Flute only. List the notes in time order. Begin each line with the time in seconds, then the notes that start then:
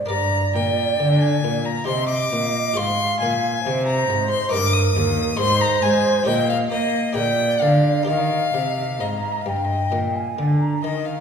0.10 D5
1.87 D#5
2.77 F5
3.65 C5
4.52 A#4
5.38 C5
6.27 D#5
7.16 D5
8.07 D#5
8.99 A#5
9.46 G5
10.15 G#5
10.61 A#5